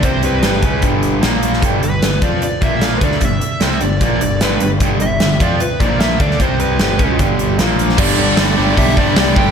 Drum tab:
CC |----------------|----------------|----------------|----------------|
HH |x-x-x-x-x-x-x-x-|x-x-x-x-x-x-x-x-|x-x-x-x-x-x-x-x-|x-x-x-x-x-x-x-x-|
SD |----oo------o--o|----o-------o--o|----oo------o---|----oo------o--o|
BD |o-----o-o-------|o-----o---o---o-|o-------o-------|o-----o---o---o-|

CC |----------------|x---------------|
HH |x-x-x-x-x-x-x-x-|----o---o---o---|
SD |----o-------o--o|----o-------oo--|
BD |o-----o-o-------|o-------o-o---o-|